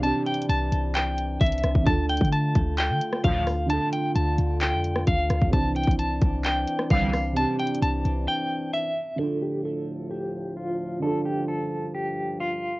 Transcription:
0.00 0.13 C2 loud
0.00 1.88 C3 medium
0.00 1.83 E3 medium
0.00 1.88 E3 medium
0.00 0.02 C4 medium
0.00 1.83 C4 medium
0.00 1.82 C4 medium
0.00 0.04 D4 medium
0.00 1.83 D4 medium
0.00 0.22 A5 loud
0.00 closed hi-hat medium
0.06 1.84 G4 medium
0.26 0.45 G5 medium
0.26 closed hi-hat soft
0.34 closed hi-hat medium
0.42 closed hi-hat medium
0.49 0.71 C2 loud
0.49 0.92 A5 medium
0.49 closed hi-hat medium
0.72 1.38 C2 loud
0.72 closed hi-hat medium
0.95 1.38 G5 medium
0.95 clap loud
0.95 closed hi-hat medium
1.18 closed hi-hat medium
1.41 1.63 C2 loud
1.41 1.84 E5 medium
1.41 kick loud
1.41 closed hi-hat medium
1.46 closed hi-hat medium
1.52 closed hi-hat medium
1.58 closed hi-hat medium
1.64 1.75 C2 loud
1.64 cross-stick medium
1.64 closed hi-hat medium
1.75 1.86 C2 loud
1.75 kick medium
1.83 2.20 D2 loud
1.83 3.64 D3 medium
1.83 5.49 D3 medium
1.83 5.49 A3 medium
1.83 3.65 D4 medium
1.83 5.49 F4 medium
1.83 2.05 A5 loud
1.83 kick loud
1.83 closed hi-hat medium
1.87 3.66 F4 medium
1.87 3.68 A4 medium
2.09 2.28 G5 medium
2.09 closed hi-hat medium
2.17 2.54 D3 loud
2.17 kick loud
2.17 closed hi-hat medium
2.25 closed hi-hat medium
2.32 2.76 A5 medium
2.32 closed hi-hat loud
2.55 2.91 D2 loud
2.55 kick loud
2.55 closed hi-hat medium
2.78 3.21 G5 medium
2.78 clap loud
2.78 closed hi-hat medium
2.90 3.01 D3 loud
3.01 closed hi-hat medium
3.13 cross-stick medium
3.24 3.43 D2 loud
3.24 3.79 D2 loud
3.24 3.43 A2 loud
3.24 3.43 F3 loud
3.24 3.67 F5 medium
3.24 kick loud
3.24 closed hi-hat medium
3.47 cross-stick medium
3.47 open hi-hat medium
3.66 5.47 D3 medium
3.66 5.49 D4 medium
3.66 3.88 A5 loud
3.66 closed hi-hat medium
3.71 5.50 F4 medium
3.71 5.51 A4 medium
3.93 4.11 G5 medium
3.93 closed hi-hat medium
4.16 4.38 D2 loud
4.16 4.59 A5 medium
4.16 closed hi-hat loud
4.38 4.74 D2 loud
4.38 closed hi-hat medium
4.61 5.05 G5 medium
4.61 clap loud
4.61 closed hi-hat medium
4.73 5.06 F2 loud
4.84 closed hi-hat medium
4.96 cross-stick medium
5.07 5.29 D2 loud
5.07 5.50 F5 medium
5.07 kick loud
5.07 closed hi-hat medium
5.30 5.41 D2 loud
5.30 cross-stick medium
5.30 closed hi-hat medium
5.42 5.53 D2 loud
5.42 kick medium
5.49 5.86 C2 loud
5.49 7.31 C3 medium
5.49 9.03 E3 medium
5.49 7.32 C4 medium
5.49 9.03 C4 medium
5.49 9.03 D4 medium
5.49 5.71 A5 loud
5.49 kick loud
5.49 closed hi-hat medium
5.54 7.34 E3 medium
5.54 7.33 D4 medium
5.76 5.95 G5 medium
5.76 closed hi-hat medium
5.84 6.20 C2 loud
5.84 kick loud
5.84 closed hi-hat medium
5.91 closed hi-hat medium
5.99 6.42 A5 medium
5.99 closed hi-hat medium
6.22 6.66 C2 loud
6.22 kick loud
6.22 closed hi-hat medium
6.44 6.88 G5 loud
6.44 clap loud
6.44 closed hi-hat medium
6.68 closed hi-hat medium
6.79 cross-stick medium
6.90 7.45 C2 loud
6.90 7.10 E2 loud
6.90 7.10 D3 loud
6.90 7.10 G3 loud
6.90 7.34 F5 medium
6.90 kick loud
6.90 closed hi-hat medium
7.13 cross-stick medium
7.13 open hi-hat medium
7.33 9.14 C3 medium
7.33 9.15 C4 medium
7.33 closed hi-hat medium
7.37 9.16 D4 medium
7.37 9.17 G4 medium
7.37 7.55 A5 loud
7.59 7.78 G5 medium
7.59 closed hi-hat soft
7.67 closed hi-hat medium
7.74 closed hi-hat medium
7.82 8.04 C2 loud
7.82 8.25 A5 medium
7.82 closed hi-hat loud
8.05 8.27 C2 loud
8.05 closed hi-hat medium
8.28 8.71 G5 medium
8.74 9.17 E5 medium
9.16 12.80 D2 medium
9.16 11.01 A2 medium
9.16 10.97 D3 medium
9.16 12.80 F3 medium
9.16 10.98 D4 medium
9.16 9.38 A4 loud
9.21 11.00 F4 medium
9.21 11.01 A4 medium
9.42 9.61 G4 medium
9.65 10.08 A4 medium
10.11 10.54 G4 medium
10.57 11.00 F4 medium
11.00 12.80 G2 medium
11.00 12.80 D3 medium
11.00 12.80 D4 medium
11.00 11.21 A4 loud
11.04 12.80 F4 medium
11.04 12.80 A4 medium
11.26 11.44 G4 medium
11.48 11.92 A4 medium
11.95 12.37 G4 medium
12.40 12.80 F4 medium

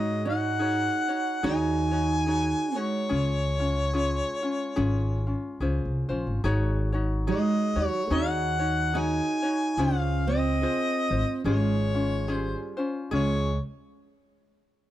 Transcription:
0.00 0.85 G#2 loud
0.00 0.23 G#3 medium
0.00 0.26 D#4 medium
0.00 0.25 F#4 medium
0.00 0.26 G#4 medium
0.00 0.24 C#5 medium
0.00 0.24 D#5 loud
0.25 1.40 D#4 medium
0.25 0.59 D#4 soft
0.25 0.60 F#4 medium
0.25 0.60 C#5 medium
0.29 1.42 F#5 loud
0.59 1.09 D#4 medium
0.59 1.08 F#4 medium
0.59 1.09 G#4 medium
0.59 1.07 C#5 medium
1.08 1.43 D#4 soft
1.08 1.43 F#4 soft
1.08 1.43 C#5 medium
1.43 2.52 D#2 loud
1.43 1.92 D#4 medium
1.43 2.76 D#4 loud
1.43 1.91 F#4 loud
1.43 1.92 G#4 medium
1.43 1.90 C#5 medium
1.43 2.79 G#5 loud
1.91 2.26 D#4 soft
1.91 2.27 F#4 medium
1.91 2.27 C#5 medium
2.26 2.76 D#4 medium
2.26 2.75 F#4 medium
2.26 2.76 G#4 medium
2.26 2.74 C#5 medium
2.75 5.61 G#3 medium
2.75 3.09 D#4 soft
2.75 3.10 F#4 medium
2.75 3.10 C#5 medium
2.75 5.62 C#5 loud
3.09 4.20 C#2 medium
3.09 3.59 C#4 medium
3.09 3.59 F4 medium
3.09 3.59 G#4 medium
3.60 3.93 C#4 soft
3.60 3.93 F4 medium
3.93 4.43 C#4 medium
3.93 4.42 F4 medium
3.93 4.43 G#4 medium
4.43 4.75 C#4 soft
4.43 4.76 F4 medium
4.76 5.32 G#1 loud
4.76 5.26 C#4 medium
4.76 5.25 F4 medium
4.76 5.26 G#4 medium
5.27 5.60 C#4 soft
5.27 5.61 F4 medium
5.60 5.83 C#2 medium
5.60 6.10 C#4 medium
5.60 6.09 F4 medium
5.60 6.10 G#4 medium
5.60 6.08 C5 medium
5.85 6.08 C2 medium
6.09 6.25 A#1 medium
6.09 6.44 C#4 soft
6.09 6.44 F4 medium
6.09 6.44 C5 medium
6.27 6.43 G#1 medium
6.44 7.30 G#1 loud
6.44 6.93 D#4 medium
6.44 6.93 F#4 loud
6.44 6.93 G#4 medium
6.44 6.91 C#5 loud
6.92 7.27 D#4 medium
6.92 7.27 F#4 medium
6.92 7.28 C#5 medium
7.27 7.86 G#3 medium
7.27 7.76 D#4 medium
7.27 7.75 F#4 medium
7.27 7.76 G#4 medium
7.27 7.75 C#5 medium
7.27 7.87 D#5 loud
7.76 7.88 D#2 medium
7.76 8.10 D#4 soft
7.76 8.10 F#4 medium
7.76 8.11 C#5 medium
7.86 8.10 F#3 medium
7.86 8.16 C#5 loud
8.10 9.19 D#2 loud
8.10 8.94 D#4 loud
8.10 8.60 D#4 medium
8.10 8.59 F#4 medium
8.10 8.60 G#4 medium
8.10 8.58 C#5 medium
8.10 9.00 F#5 loud
8.59 8.94 D#4 soft
8.59 8.94 F#4 medium
8.59 8.94 C#5 medium
8.94 9.77 D#4 medium
8.94 9.43 D#4 medium
8.94 9.42 F#4 medium
8.94 9.43 G#4 medium
8.94 9.41 C#5 medium
8.99 9.82 G#5 loud
9.42 9.78 D#4 soft
9.42 9.78 F#4 medium
9.42 9.78 C#5 medium
9.77 10.63 C#2 loud
9.77 10.27 C#4 medium
9.77 10.27 F4 medium
9.77 10.27 G#4 medium
9.77 10.26 C5 medium
9.77 10.28 F5 loud
10.27 11.41 C4 medium
10.27 10.62 F4 soft
10.27 10.62 C5 medium
10.27 11.42 D#5 loud
10.62 11.11 F4 medium
10.62 11.10 G#4 medium
10.62 11.10 C5 medium
11.10 11.22 G#1 medium
11.10 11.45 F4 soft
11.10 11.45 C5 medium
11.44 12.53 G#1 loud
11.44 12.30 G#3 medium
11.44 11.94 C#4 medium
11.44 11.93 F4 medium
11.44 11.94 G#4 medium
11.44 12.30 C#5 medium
11.95 12.28 C#4 soft
11.95 12.28 F4 medium
12.28 12.73 G3 medium
12.28 12.77 C#4 medium
12.28 12.77 F4 medium
12.28 12.77 G#4 medium
12.28 12.74 C5 medium
12.77 13.11 C#4 medium
12.77 13.12 F4 medium
12.77 13.12 C5 medium
13.11 13.57 C#2 medium
13.11 13.57 G#3 medium
13.11 13.51 C#4 medium
13.11 13.51 F4 medium
13.11 13.50 G#4 medium
13.11 13.58 C#5 medium

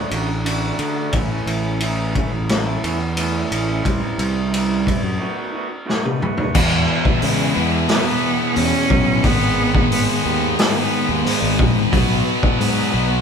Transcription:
0.00 0.11 A3 soft
0.00 0.12 D4 soft
0.00 0.12 F#4 medium
0.11 0.71 A1 medium
0.11 0.43 D3 medium
0.11 0.28 A3 medium
0.11 0.27 D4 medium
0.11 0.27 F#4 medium
0.11 ride medium
0.28 muted clean electric guitar stroke soft
0.44 0.77 D3 medium
0.44 0.78 A3 medium
0.44 0.79 D4 medium
0.44 0.80 F#4 medium
0.44 ride medium
0.78 1.11 D3 medium
0.78 1.09 D3 medium
0.78 0.98 A3 medium
0.78 0.96 D4 medium
0.78 0.95 F#4 medium
0.78 ride medium
0.96 1.13 A3 soft
0.96 1.12 D4 medium
0.96 1.11 F#4 medium
1.13 1.28 A1 medium
1.13 1.64 A2 medium
1.13 1.65 E3 medium
1.13 1.32 A3 medium
1.13 1.31 C#4 medium
1.13 1.29 E4 medium
1.13 kick medium
1.13 ride medium
1.31 1.81 A3 medium
1.31 1.82 C#4 medium
1.31 1.82 E4 medium
1.46 2.20 A1 medium
1.46 ride soft
1.80 2.49 A2 medium
1.80 2.14 E3 medium
1.80 2.15 A3 loud
1.80 2.15 C#4 medium
1.80 2.16 E4 medium
1.80 ride medium
2.15 2.32 E3 medium
2.15 2.32 A3 medium
2.15 2.32 C#4 medium
2.15 2.31 E4 medium
2.15 kick medium
2.15 ride soft
2.31 2.76 A1 medium
2.31 muted clean electric guitar stroke soft
2.49 snare loud
2.49 ride medium
2.66 2.82 A3 soft
2.66 2.83 C#4 soft
2.66 2.84 E4 medium
2.82 3.42 E2 medium
2.82 3.00 E3 medium
2.82 3.00 A3 medium
2.82 3.00 C#4 medium
2.82 2.99 E4 medium
2.82 ride medium
3.00 muted clean electric guitar stroke soft
3.17 3.83 A2 medium
3.17 3.50 E3 medium
3.17 3.51 A3 medium
3.17 3.52 C#4 medium
3.17 3.52 E4 medium
3.17 ride medium
3.51 3.81 A1 medium
3.51 3.83 E3 medium
3.51 3.70 A3 medium
3.51 3.69 C#4 medium
3.51 3.67 E4 medium
3.51 ride medium
3.68 3.84 A3 medium
3.68 3.84 C#4 medium
3.68 3.83 E4 medium
3.85 4.00 C2 medium
3.85 4.36 C3 medium
3.85 4.36 E3 medium
3.85 4.02 G3 medium
3.85 4.01 C4 medium
3.85 4.00 E4 medium
3.85 kick medium
3.85 ride medium
4.01 4.51 G3 medium
4.01 4.52 C4 medium
4.01 4.53 E4 medium
4.18 4.92 C2 medium
4.18 ride medium
4.52 5.18 C3 medium
4.52 4.83 E3 medium
4.52 4.85 G3 medium
4.52 4.86 C4 medium
4.52 4.86 E4 medium
4.52 ride medium
4.85 5.02 E3 medium
4.85 5.01 G3 medium
4.85 5.01 C4 medium
4.85 5.01 E4 medium
4.85 kick medium
4.85 ride medium
5.02 5.18 F#2 medium
5.02 muted clean electric guitar stroke soft
5.18 5.70 B2 medium
5.18 5.51 D#3 medium
5.18 5.37 A3 medium
5.18 5.36 B3 medium
5.18 5.34 F#4 medium
5.36 5.52 A3 soft
5.36 5.53 B3 medium
5.36 5.54 F#4 medium
5.52 5.69 D#3 medium
5.52 5.69 A3 medium
5.52 5.68 B3 medium
5.52 5.68 F#4 medium
5.69 muted clean electric guitar stroke soft
5.86 6.52 B2 medium
5.86 6.19 D#3 medium
5.86 6.20 A3 medium
5.86 6.20 B3 medium
5.86 6.21 F#4 medium
5.86 snare medium
6.05 high tom medium
6.20 6.52 D#3 medium
6.20 6.38 A3 medium
6.20 6.37 B3 medium
6.20 6.36 F#4 medium
6.20 mid tom medium
6.37 6.54 A3 medium
6.37 6.53 B3 medium
6.37 6.53 F#4 medium
6.37 floor tom medium
6.55 7.54 E2 medium
6.55 6.84 E2 loud
6.55 7.54 B2 medium
6.55 7.54 E3 medium
6.55 11.90 G#4 medium
6.55 9.22 E5 medium
6.55 13.21 B5 medium
6.55 kick loud
6.55 crash loud
7.05 kick medium
7.22 7.52 C#3 loud
7.22 7.85 G#3 medium
7.22 open hi-hat medium
7.55 7.85 E2 loud
7.55 9.23 E2 medium
7.55 9.22 B2 medium
7.55 9.22 E3 medium
7.88 8.57 B3 loud
7.88 snare loud
7.88 open hi-hat medium
8.56 8.71 E2 medium
8.56 9.25 C#4 loud
8.56 open hi-hat medium
8.90 9.20 B1 medium
8.90 kick medium
9.23 9.82 G#1 loud
9.23 10.22 G#2 medium
9.23 10.23 D#3 medium
9.23 10.23 G#3 loud
9.23 9.91 B3 loud
9.23 13.21 D#5 medium
9.23 kick loud
9.23 open hi-hat medium
9.75 kick medium
9.91 10.06 G#1 medium
9.91 10.07 B3 medium
9.91 open hi-hat medium
10.08 10.55 B3 medium
10.24 10.54 D#2 medium
10.24 11.91 G#2 medium
10.24 11.91 D#3 medium
10.24 11.90 G#3 medium
10.58 10.76 G#3 medium
10.58 snare loud
10.58 open hi-hat medium
10.74 11.25 B3 loud
11.09 11.23 D#2 loud
11.25 11.40 G#2 medium
11.25 11.73 B3 medium
11.25 open hi-hat medium
11.42 11.57 G#1 medium
11.59 11.74 A#1 medium
11.59 kick loud
11.92 12.22 B1 medium
11.92 12.91 B2 medium
11.92 12.92 F#3 loud
11.92 12.93 B3 medium
11.92 13.21 F#4 medium
11.92 kick loud
11.92 open hi-hat medium
12.43 kick medium
12.60 12.89 G#2 medium
12.60 13.21 B3 medium
12.60 open hi-hat medium
12.93 13.21 B1 medium
12.93 13.21 B2 medium
12.93 13.21 F#3 medium
12.93 13.21 B3 medium

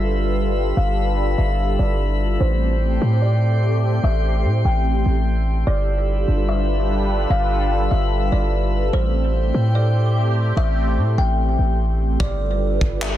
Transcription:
0.00 0.73 G1 loud
0.00 2.37 G3 medium
0.00 2.37 D4 medium
0.00 2.37 F4 medium
0.00 2.37 G4 medium
0.00 2.37 A4 medium
0.00 5.63 A4 medium
0.00 2.37 B4 medium
0.00 0.73 E5 medium
0.00 2.37 B5 medium
0.00 2.37 E6 medium
0.77 1.36 G1 loud
0.77 1.35 F5 medium
1.38 1.77 G1 loud
1.38 1.76 E5 medium
1.79 2.38 G1 loud
1.79 2.37 D5 medium
2.40 2.99 A1 loud
2.40 5.64 A3 medium
2.40 5.64 C4 medium
2.40 5.64 G4 medium
2.40 2.79 C5 loud
2.40 5.64 G5 medium
2.40 5.64 C6 loud
3.02 4.00 A2 loud
3.22 4.00 D5 medium
4.04 4.46 A1 loud
4.04 4.61 E5 loud
4.44 4.64 A2 loud
4.65 5.04 A1 loud
4.65 4.84 G5 medium
5.06 5.64 A1 loud
5.67 6.26 G1 loud
5.67 8.90 G3 medium
5.67 8.90 D4 medium
5.67 8.90 F4 medium
5.67 8.90 G4 medium
5.67 8.90 A4 medium
5.67 12.16 A4 medium
5.67 8.90 B4 medium
5.67 6.05 D5 loud
5.67 8.90 B5 medium
5.67 8.90 E6 medium
6.28 7.26 G1 loud
6.49 7.26 E5 medium
7.30 7.89 G1 loud
7.30 7.88 F5 medium
7.91 8.31 G1 loud
7.91 8.30 E5 medium
8.32 8.91 G1 loud
8.32 8.90 D5 medium
8.93 9.52 A1 loud
8.93 12.17 A3 medium
8.93 12.17 C4 medium
8.93 12.17 G4 medium
8.93 9.32 C5 loud
8.93 12.17 G5 medium
8.93 12.17 C6 loud
9.54 10.53 A2 loud
9.75 10.53 D5 medium
10.57 10.99 A1 loud
10.57 11.15 E5 loud
10.97 11.17 A2 loud
11.18 11.57 A1 loud
11.18 11.37 G5 medium
11.59 12.17 A1 loud
12.20 12.79 G1 loud
12.20 13.17 G3 medium
12.20 13.17 D4 medium
12.20 13.17 F4 medium
12.20 13.17 G4 medium
12.20 13.17 A4 medium
12.20 13.17 B4 medium
12.20 12.58 D5 loud
12.20 kick loud
12.81 13.17 G1 loud
12.81 kick medium
13.02 13.17 E5 medium
13.02 clap loud

